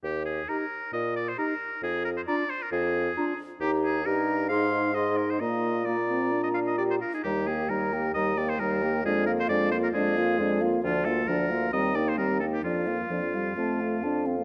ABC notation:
X:1
M:4/4
L:1/16
Q:1/4=134
K:Eb
V:1 name="Flute"
z4 b4 z4 b4 | z4 b4 z4 b4 | b4 b4 c'4 c'4 | b4 b8- b2 z2 |
b2 g2 b2 g2 b2 g2 b2 g2 | d2 f2 d2 f2 d2 f2 d2 f2 | [K:Bb] d2 f2 d2 f2 b2 g2 b2 g2 | d2 f2 d2 f2 a2 f2 a2 f2 |]
V:2 name="Oboe"
G2 A2 B4 e2 d c B4 | A2 B c d2 c B A6 z2 | G2 A2 B4 f4 e2 B c | e4 d4- d e f e d c B A |
G2 A2 B4 e2 d c B4 | A2 B c d2 c B A6 z2 | [K:Bb] F2 A2 B4 e2 d c B2 A G | F12- F2 z2 |]
V:3 name="Clarinet"
z4 G4 z4 G4 | z4 F4 z4 F4 | G4 G4 A4 A4 | F4 F8- F2 z2 |
E2 G2 E2 G2 E2 G2 E2 G2 | D2 F2 D2 F2 D2 F2 D2 F2 | [K:Bb] D2 F2 D2 F2 C2 E2 C2 E2 | D2 F2 D2 F2 C2 F2 C2 F2 |]
V:4 name="French horn"
z4 E4 z4 E4 | z4 D4 z4 D4 | E4 E4 E4 E4 | B,4 B,2 C2 D4 G2 F E |
G,2 B,2 G,2 B,2 G,2 B,2 G,2 B,2 | A,2 B,2 A,2 B,2 A,2 B,2 A,2 B,2 | [K:Bb] F,2 B,2 F,2 B,2 G,2 B,2 G,2 B,2 | F,2 B,2 F,2 G,2 A,4 D2 C B, |]
V:5 name="Bassoon" clef=bass
E,,4 z4 B,,4 z4 | F,,4 z4 F,,4 z4 | E,,4 G,,4 A,,8 | B,,12- B,,2 z2 |
E,,4 E,,4 E,,4 E,,4 | F,,4 F,,4 F,,4 F,,4 | [K:Bb] D,,4 D,,4 E,,4 E,,4 | F,,4 F,,4 F,,4 F,,4 |]